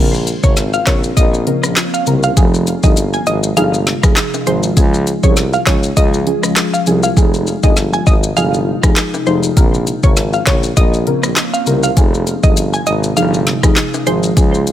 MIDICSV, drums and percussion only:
0, 0, Header, 1, 2, 480
1, 0, Start_track
1, 0, Key_signature, -4, "minor"
1, 0, Tempo, 600000
1, 1894, Time_signature, 4, 2, 24, 8
1, 11778, End_track
2, 0, Start_track
2, 0, Title_t, "Drums"
2, 113, Note_on_c, 9, 82, 54
2, 193, Note_off_c, 9, 82, 0
2, 215, Note_on_c, 9, 82, 59
2, 216, Note_on_c, 9, 42, 60
2, 295, Note_off_c, 9, 82, 0
2, 296, Note_off_c, 9, 42, 0
2, 345, Note_on_c, 9, 82, 67
2, 348, Note_on_c, 9, 36, 92
2, 425, Note_off_c, 9, 82, 0
2, 428, Note_off_c, 9, 36, 0
2, 453, Note_on_c, 9, 82, 78
2, 454, Note_on_c, 9, 38, 62
2, 457, Note_on_c, 9, 42, 84
2, 533, Note_off_c, 9, 82, 0
2, 534, Note_off_c, 9, 38, 0
2, 537, Note_off_c, 9, 42, 0
2, 587, Note_on_c, 9, 82, 48
2, 667, Note_off_c, 9, 82, 0
2, 693, Note_on_c, 9, 82, 58
2, 694, Note_on_c, 9, 42, 51
2, 695, Note_on_c, 9, 36, 97
2, 695, Note_on_c, 9, 38, 105
2, 696, Note_on_c, 9, 39, 85
2, 773, Note_off_c, 9, 82, 0
2, 774, Note_off_c, 9, 42, 0
2, 775, Note_off_c, 9, 36, 0
2, 775, Note_off_c, 9, 38, 0
2, 776, Note_off_c, 9, 39, 0
2, 828, Note_on_c, 9, 82, 71
2, 908, Note_off_c, 9, 82, 0
2, 935, Note_on_c, 9, 36, 111
2, 936, Note_on_c, 9, 42, 82
2, 936, Note_on_c, 9, 82, 78
2, 1015, Note_off_c, 9, 36, 0
2, 1016, Note_off_c, 9, 42, 0
2, 1016, Note_off_c, 9, 82, 0
2, 1071, Note_on_c, 9, 82, 55
2, 1151, Note_off_c, 9, 82, 0
2, 1174, Note_on_c, 9, 42, 55
2, 1254, Note_off_c, 9, 42, 0
2, 1307, Note_on_c, 9, 82, 77
2, 1308, Note_on_c, 9, 37, 110
2, 1387, Note_off_c, 9, 82, 0
2, 1388, Note_off_c, 9, 37, 0
2, 1413, Note_on_c, 9, 38, 115
2, 1413, Note_on_c, 9, 39, 96
2, 1414, Note_on_c, 9, 42, 87
2, 1414, Note_on_c, 9, 82, 70
2, 1493, Note_off_c, 9, 38, 0
2, 1493, Note_off_c, 9, 39, 0
2, 1494, Note_off_c, 9, 42, 0
2, 1494, Note_off_c, 9, 82, 0
2, 1552, Note_on_c, 9, 82, 57
2, 1632, Note_off_c, 9, 82, 0
2, 1651, Note_on_c, 9, 82, 55
2, 1656, Note_on_c, 9, 42, 61
2, 1731, Note_off_c, 9, 82, 0
2, 1736, Note_off_c, 9, 42, 0
2, 1784, Note_on_c, 9, 82, 78
2, 1864, Note_off_c, 9, 82, 0
2, 1895, Note_on_c, 9, 36, 121
2, 1895, Note_on_c, 9, 42, 77
2, 1896, Note_on_c, 9, 82, 72
2, 1975, Note_off_c, 9, 36, 0
2, 1975, Note_off_c, 9, 42, 0
2, 1976, Note_off_c, 9, 82, 0
2, 2033, Note_on_c, 9, 82, 54
2, 2113, Note_off_c, 9, 82, 0
2, 2135, Note_on_c, 9, 82, 58
2, 2136, Note_on_c, 9, 42, 59
2, 2215, Note_off_c, 9, 82, 0
2, 2216, Note_off_c, 9, 42, 0
2, 2265, Note_on_c, 9, 82, 68
2, 2268, Note_on_c, 9, 36, 92
2, 2345, Note_off_c, 9, 82, 0
2, 2348, Note_off_c, 9, 36, 0
2, 2372, Note_on_c, 9, 82, 76
2, 2377, Note_on_c, 9, 42, 81
2, 2452, Note_off_c, 9, 82, 0
2, 2457, Note_off_c, 9, 42, 0
2, 2506, Note_on_c, 9, 82, 48
2, 2586, Note_off_c, 9, 82, 0
2, 2612, Note_on_c, 9, 82, 57
2, 2614, Note_on_c, 9, 42, 49
2, 2692, Note_off_c, 9, 82, 0
2, 2694, Note_off_c, 9, 42, 0
2, 2747, Note_on_c, 9, 82, 75
2, 2827, Note_off_c, 9, 82, 0
2, 2854, Note_on_c, 9, 82, 79
2, 2856, Note_on_c, 9, 42, 82
2, 2934, Note_off_c, 9, 82, 0
2, 2936, Note_off_c, 9, 42, 0
2, 2991, Note_on_c, 9, 82, 55
2, 3071, Note_off_c, 9, 82, 0
2, 3094, Note_on_c, 9, 38, 74
2, 3094, Note_on_c, 9, 42, 56
2, 3174, Note_off_c, 9, 38, 0
2, 3174, Note_off_c, 9, 42, 0
2, 3227, Note_on_c, 9, 36, 104
2, 3227, Note_on_c, 9, 37, 109
2, 3227, Note_on_c, 9, 82, 78
2, 3307, Note_off_c, 9, 36, 0
2, 3307, Note_off_c, 9, 37, 0
2, 3307, Note_off_c, 9, 82, 0
2, 3332, Note_on_c, 9, 38, 124
2, 3333, Note_on_c, 9, 39, 96
2, 3333, Note_on_c, 9, 42, 86
2, 3333, Note_on_c, 9, 82, 69
2, 3412, Note_off_c, 9, 38, 0
2, 3413, Note_off_c, 9, 39, 0
2, 3413, Note_off_c, 9, 42, 0
2, 3413, Note_off_c, 9, 82, 0
2, 3472, Note_on_c, 9, 65, 56
2, 3472, Note_on_c, 9, 82, 58
2, 3552, Note_off_c, 9, 65, 0
2, 3552, Note_off_c, 9, 82, 0
2, 3571, Note_on_c, 9, 82, 54
2, 3576, Note_on_c, 9, 42, 62
2, 3651, Note_off_c, 9, 82, 0
2, 3656, Note_off_c, 9, 42, 0
2, 3704, Note_on_c, 9, 82, 81
2, 3784, Note_off_c, 9, 82, 0
2, 3814, Note_on_c, 9, 36, 118
2, 3814, Note_on_c, 9, 42, 81
2, 3816, Note_on_c, 9, 82, 76
2, 3894, Note_off_c, 9, 36, 0
2, 3894, Note_off_c, 9, 42, 0
2, 3896, Note_off_c, 9, 82, 0
2, 3952, Note_on_c, 9, 82, 55
2, 4032, Note_off_c, 9, 82, 0
2, 4054, Note_on_c, 9, 82, 57
2, 4056, Note_on_c, 9, 42, 63
2, 4134, Note_off_c, 9, 82, 0
2, 4136, Note_off_c, 9, 42, 0
2, 4185, Note_on_c, 9, 82, 68
2, 4187, Note_on_c, 9, 36, 92
2, 4265, Note_off_c, 9, 82, 0
2, 4267, Note_off_c, 9, 36, 0
2, 4292, Note_on_c, 9, 82, 79
2, 4294, Note_on_c, 9, 38, 67
2, 4296, Note_on_c, 9, 42, 85
2, 4372, Note_off_c, 9, 82, 0
2, 4374, Note_off_c, 9, 38, 0
2, 4376, Note_off_c, 9, 42, 0
2, 4425, Note_on_c, 9, 82, 47
2, 4505, Note_off_c, 9, 82, 0
2, 4531, Note_on_c, 9, 82, 57
2, 4534, Note_on_c, 9, 36, 95
2, 4534, Note_on_c, 9, 42, 49
2, 4535, Note_on_c, 9, 38, 107
2, 4536, Note_on_c, 9, 39, 89
2, 4611, Note_off_c, 9, 82, 0
2, 4614, Note_off_c, 9, 36, 0
2, 4614, Note_off_c, 9, 42, 0
2, 4615, Note_off_c, 9, 38, 0
2, 4616, Note_off_c, 9, 39, 0
2, 4666, Note_on_c, 9, 82, 76
2, 4746, Note_off_c, 9, 82, 0
2, 4774, Note_on_c, 9, 36, 102
2, 4774, Note_on_c, 9, 82, 79
2, 4776, Note_on_c, 9, 42, 83
2, 4854, Note_off_c, 9, 36, 0
2, 4854, Note_off_c, 9, 82, 0
2, 4856, Note_off_c, 9, 42, 0
2, 4910, Note_on_c, 9, 82, 54
2, 4990, Note_off_c, 9, 82, 0
2, 5014, Note_on_c, 9, 42, 56
2, 5094, Note_off_c, 9, 42, 0
2, 5146, Note_on_c, 9, 82, 80
2, 5147, Note_on_c, 9, 37, 107
2, 5226, Note_off_c, 9, 82, 0
2, 5227, Note_off_c, 9, 37, 0
2, 5252, Note_on_c, 9, 38, 120
2, 5253, Note_on_c, 9, 39, 97
2, 5253, Note_on_c, 9, 42, 88
2, 5253, Note_on_c, 9, 82, 73
2, 5332, Note_off_c, 9, 38, 0
2, 5333, Note_off_c, 9, 39, 0
2, 5333, Note_off_c, 9, 42, 0
2, 5333, Note_off_c, 9, 82, 0
2, 5391, Note_on_c, 9, 82, 56
2, 5471, Note_off_c, 9, 82, 0
2, 5491, Note_on_c, 9, 82, 57
2, 5496, Note_on_c, 9, 42, 62
2, 5571, Note_off_c, 9, 82, 0
2, 5576, Note_off_c, 9, 42, 0
2, 5623, Note_on_c, 9, 82, 81
2, 5703, Note_off_c, 9, 82, 0
2, 5734, Note_on_c, 9, 36, 114
2, 5735, Note_on_c, 9, 82, 70
2, 5814, Note_off_c, 9, 36, 0
2, 5815, Note_off_c, 9, 82, 0
2, 5872, Note_on_c, 9, 82, 54
2, 5952, Note_off_c, 9, 82, 0
2, 5974, Note_on_c, 9, 82, 57
2, 6054, Note_off_c, 9, 82, 0
2, 6104, Note_on_c, 9, 82, 70
2, 6107, Note_on_c, 9, 36, 94
2, 6184, Note_off_c, 9, 82, 0
2, 6187, Note_off_c, 9, 36, 0
2, 6212, Note_on_c, 9, 82, 76
2, 6213, Note_on_c, 9, 38, 65
2, 6292, Note_off_c, 9, 82, 0
2, 6293, Note_off_c, 9, 38, 0
2, 6346, Note_on_c, 9, 82, 49
2, 6426, Note_off_c, 9, 82, 0
2, 6451, Note_on_c, 9, 82, 55
2, 6454, Note_on_c, 9, 36, 94
2, 6531, Note_off_c, 9, 82, 0
2, 6534, Note_off_c, 9, 36, 0
2, 6587, Note_on_c, 9, 82, 75
2, 6667, Note_off_c, 9, 82, 0
2, 6694, Note_on_c, 9, 82, 79
2, 6774, Note_off_c, 9, 82, 0
2, 6831, Note_on_c, 9, 82, 53
2, 6911, Note_off_c, 9, 82, 0
2, 7067, Note_on_c, 9, 36, 103
2, 7067, Note_on_c, 9, 37, 110
2, 7067, Note_on_c, 9, 82, 77
2, 7147, Note_off_c, 9, 36, 0
2, 7147, Note_off_c, 9, 37, 0
2, 7147, Note_off_c, 9, 82, 0
2, 7172, Note_on_c, 9, 38, 120
2, 7173, Note_on_c, 9, 39, 97
2, 7174, Note_on_c, 9, 82, 73
2, 7252, Note_off_c, 9, 38, 0
2, 7253, Note_off_c, 9, 39, 0
2, 7254, Note_off_c, 9, 82, 0
2, 7312, Note_on_c, 9, 65, 58
2, 7312, Note_on_c, 9, 82, 54
2, 7392, Note_off_c, 9, 65, 0
2, 7392, Note_off_c, 9, 82, 0
2, 7411, Note_on_c, 9, 82, 55
2, 7491, Note_off_c, 9, 82, 0
2, 7544, Note_on_c, 9, 82, 81
2, 7624, Note_off_c, 9, 82, 0
2, 7654, Note_on_c, 9, 42, 76
2, 7655, Note_on_c, 9, 36, 120
2, 7656, Note_on_c, 9, 82, 69
2, 7734, Note_off_c, 9, 42, 0
2, 7735, Note_off_c, 9, 36, 0
2, 7736, Note_off_c, 9, 82, 0
2, 7792, Note_on_c, 9, 82, 52
2, 7872, Note_off_c, 9, 82, 0
2, 7894, Note_on_c, 9, 82, 56
2, 7896, Note_on_c, 9, 42, 59
2, 7974, Note_off_c, 9, 82, 0
2, 7976, Note_off_c, 9, 42, 0
2, 8025, Note_on_c, 9, 82, 67
2, 8028, Note_on_c, 9, 36, 91
2, 8105, Note_off_c, 9, 82, 0
2, 8108, Note_off_c, 9, 36, 0
2, 8132, Note_on_c, 9, 82, 76
2, 8134, Note_on_c, 9, 38, 65
2, 8137, Note_on_c, 9, 42, 81
2, 8212, Note_off_c, 9, 82, 0
2, 8214, Note_off_c, 9, 38, 0
2, 8217, Note_off_c, 9, 42, 0
2, 8266, Note_on_c, 9, 82, 48
2, 8346, Note_off_c, 9, 82, 0
2, 8371, Note_on_c, 9, 82, 58
2, 8374, Note_on_c, 9, 36, 94
2, 8374, Note_on_c, 9, 42, 52
2, 8375, Note_on_c, 9, 38, 111
2, 8376, Note_on_c, 9, 39, 90
2, 8451, Note_off_c, 9, 82, 0
2, 8454, Note_off_c, 9, 36, 0
2, 8454, Note_off_c, 9, 42, 0
2, 8455, Note_off_c, 9, 38, 0
2, 8456, Note_off_c, 9, 39, 0
2, 8506, Note_on_c, 9, 82, 74
2, 8586, Note_off_c, 9, 82, 0
2, 8614, Note_on_c, 9, 82, 79
2, 8615, Note_on_c, 9, 36, 109
2, 8616, Note_on_c, 9, 42, 78
2, 8694, Note_off_c, 9, 82, 0
2, 8695, Note_off_c, 9, 36, 0
2, 8696, Note_off_c, 9, 42, 0
2, 8750, Note_on_c, 9, 82, 54
2, 8830, Note_off_c, 9, 82, 0
2, 8854, Note_on_c, 9, 42, 57
2, 8934, Note_off_c, 9, 42, 0
2, 8986, Note_on_c, 9, 82, 78
2, 8987, Note_on_c, 9, 37, 109
2, 9066, Note_off_c, 9, 82, 0
2, 9067, Note_off_c, 9, 37, 0
2, 9092, Note_on_c, 9, 38, 116
2, 9093, Note_on_c, 9, 39, 98
2, 9093, Note_on_c, 9, 42, 90
2, 9093, Note_on_c, 9, 82, 70
2, 9172, Note_off_c, 9, 38, 0
2, 9173, Note_off_c, 9, 39, 0
2, 9173, Note_off_c, 9, 42, 0
2, 9173, Note_off_c, 9, 82, 0
2, 9232, Note_on_c, 9, 82, 58
2, 9312, Note_off_c, 9, 82, 0
2, 9331, Note_on_c, 9, 82, 56
2, 9336, Note_on_c, 9, 42, 63
2, 9411, Note_off_c, 9, 82, 0
2, 9416, Note_off_c, 9, 42, 0
2, 9464, Note_on_c, 9, 82, 82
2, 9544, Note_off_c, 9, 82, 0
2, 9574, Note_on_c, 9, 36, 120
2, 9574, Note_on_c, 9, 42, 78
2, 9576, Note_on_c, 9, 82, 76
2, 9654, Note_off_c, 9, 36, 0
2, 9654, Note_off_c, 9, 42, 0
2, 9656, Note_off_c, 9, 82, 0
2, 9713, Note_on_c, 9, 82, 54
2, 9793, Note_off_c, 9, 82, 0
2, 9815, Note_on_c, 9, 82, 55
2, 9816, Note_on_c, 9, 42, 58
2, 9895, Note_off_c, 9, 82, 0
2, 9896, Note_off_c, 9, 42, 0
2, 9945, Note_on_c, 9, 82, 68
2, 9947, Note_on_c, 9, 36, 97
2, 10025, Note_off_c, 9, 82, 0
2, 10027, Note_off_c, 9, 36, 0
2, 10053, Note_on_c, 9, 82, 80
2, 10056, Note_on_c, 9, 42, 83
2, 10133, Note_off_c, 9, 82, 0
2, 10136, Note_off_c, 9, 42, 0
2, 10187, Note_on_c, 9, 82, 50
2, 10267, Note_off_c, 9, 82, 0
2, 10292, Note_on_c, 9, 82, 57
2, 10294, Note_on_c, 9, 42, 54
2, 10372, Note_off_c, 9, 82, 0
2, 10374, Note_off_c, 9, 42, 0
2, 10427, Note_on_c, 9, 82, 75
2, 10507, Note_off_c, 9, 82, 0
2, 10535, Note_on_c, 9, 82, 76
2, 10536, Note_on_c, 9, 42, 81
2, 10615, Note_off_c, 9, 82, 0
2, 10616, Note_off_c, 9, 42, 0
2, 10671, Note_on_c, 9, 82, 55
2, 10751, Note_off_c, 9, 82, 0
2, 10774, Note_on_c, 9, 38, 73
2, 10774, Note_on_c, 9, 42, 58
2, 10854, Note_off_c, 9, 38, 0
2, 10854, Note_off_c, 9, 42, 0
2, 10907, Note_on_c, 9, 36, 107
2, 10907, Note_on_c, 9, 37, 110
2, 10908, Note_on_c, 9, 82, 77
2, 10987, Note_off_c, 9, 36, 0
2, 10987, Note_off_c, 9, 37, 0
2, 10988, Note_off_c, 9, 82, 0
2, 11012, Note_on_c, 9, 38, 117
2, 11013, Note_on_c, 9, 39, 97
2, 11013, Note_on_c, 9, 42, 84
2, 11014, Note_on_c, 9, 82, 68
2, 11092, Note_off_c, 9, 38, 0
2, 11093, Note_off_c, 9, 39, 0
2, 11093, Note_off_c, 9, 42, 0
2, 11094, Note_off_c, 9, 82, 0
2, 11152, Note_on_c, 9, 65, 59
2, 11152, Note_on_c, 9, 82, 58
2, 11232, Note_off_c, 9, 65, 0
2, 11232, Note_off_c, 9, 82, 0
2, 11251, Note_on_c, 9, 82, 56
2, 11256, Note_on_c, 9, 42, 64
2, 11331, Note_off_c, 9, 82, 0
2, 11336, Note_off_c, 9, 42, 0
2, 11385, Note_on_c, 9, 82, 78
2, 11465, Note_off_c, 9, 82, 0
2, 11494, Note_on_c, 9, 36, 124
2, 11494, Note_on_c, 9, 42, 78
2, 11497, Note_on_c, 9, 82, 71
2, 11574, Note_off_c, 9, 36, 0
2, 11574, Note_off_c, 9, 42, 0
2, 11577, Note_off_c, 9, 82, 0
2, 11633, Note_on_c, 9, 82, 55
2, 11713, Note_off_c, 9, 82, 0
2, 11735, Note_on_c, 9, 82, 55
2, 11736, Note_on_c, 9, 42, 61
2, 11778, Note_off_c, 9, 42, 0
2, 11778, Note_off_c, 9, 82, 0
2, 11778, End_track
0, 0, End_of_file